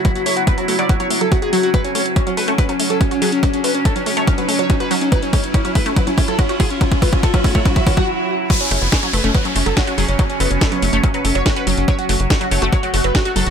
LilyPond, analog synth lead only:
\new Staff \with { instrumentName = "Analog synth lead" } { \time 4/4 \key fis \minor \tempo 4 = 142 fis'16 fis'16 cis''16 fis'16 b'16 fis'16 fis'16 d''16 fis'16 cis''16 fis'16 a'16 fis'16 gis'16 fis'16 fis'16 | b'16 cis'16 cis'16 r16 cis'16 cis'16 b'16 cis'16 b'16 cis'16 cis'16 a'16 cis'16 cis'16 gis'16 cis'16 | cis'16 cis'16 b'16 cis'16 a'16 cis'16 cis'16 cis''16 cis'16 b'16 cis'16 cis''16 cis'16 b'16 cis'16 cis'16 | b'16 cis'16 cis'16 r16 cis'16 cis'16 b'16 cis'16 b'16 cis'16 cis'16 a'16 cis'16 cis'16 gis'16 cis'16 |
cis'16 cis'16 b'16 cis'16 a'16 cis'16 cis'16 cis''16 cis'16 e''16 cis'16 fis''16 r4 | b'16 cis'16 cis'16 r16 cis'16 cis'16 b'16 cis'16 b'16 cis'16 cis'16 a'16 cis'16 cis'16 gis'16 cis'16 | cis'16 cis'16 b'16 cis'16 a'16 cis'16 cis'16 cis''16 cis'16 b'16 cis'16 cis''16 cis'16 b'16 cis'16 cis'16 | cis''16 fis'16 fis'16 r16 fis'16 fis'16 cis''16 fis'16 cis''16 fis'16 fis'16 b'16 fis'16 fis'16 a'16 fis'16 | }